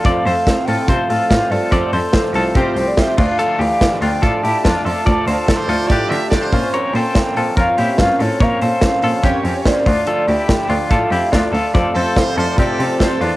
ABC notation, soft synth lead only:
X:1
M:4/4
L:1/16
Q:1/4=144
K:F
V:1 name="Soft synth lead"
f6 g2 f6 d2- | d4 z6 c d e2 f2 | f6 g2 a6 a2- | a4 z12 |
z2 g2 g4 f4 f2 _d2 | f2 f8 c _d =d4 | d4 g4 f6 f2- | f12 z4 |]